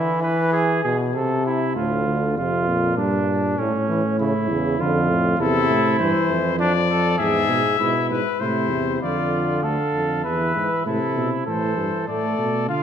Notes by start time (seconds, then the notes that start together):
Already playing: E3 E4
0.22 B4
0.52 G#4
0.84 B2 G#4
1.14 C3 A4
1.46 E4
1.76 D2 A2 F4
2.07 D3
2.37 F2 C3 F4
2.68 A#2
2.97 G2 D4
3.58 A2 C#4
3.88 E3
4.19 C#3 E4
4.49 E2 C#3
4.79 F2 D3 F4
5.09 A2
5.39 E2 C3 E4 A4
5.70 A2
5.99 G2 E3 C5
6.29 F2
6.59 F3 D4 D5
6.89 A4
7.18 E2 G#2 G#4 E5
7.49 B2
7.79 G#2 B2 E4
8.10 G#2 B4
8.40 A2 C3 E4 C5
8.71 E2
9.01 F2 D3 F4 D5
9.63 D2 A4 F5
9.94 F2
10.24 E2 E3 B4 E5
10.55 G#2
10.86 A2 C3 E4 A4
11.16 B2
11.46 A2 E3 A4 C5
11.77 G2
12.08 A2 A3 A4 D5
12.39 B2
12.68 D3 F4 F5